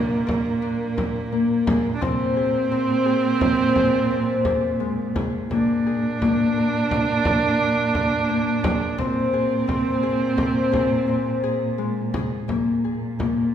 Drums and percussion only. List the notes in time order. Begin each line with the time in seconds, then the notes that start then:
0.29 frame drum
0.98 frame drum
1.67 frame drum
2.02 frame drum
3.41 frame drum
3.76 frame drum
4.45 frame drum
5.16 frame drum
5.51 frame drum
6.22 frame drum
6.91 frame drum
7.25 frame drum
7.95 frame drum
8.64 frame drum
8.98 frame drum
9.69 frame drum
10.38 frame drum
10.74 frame drum
12.14 frame drum
12.49 frame drum
12.85 frame drum
13.20 frame drum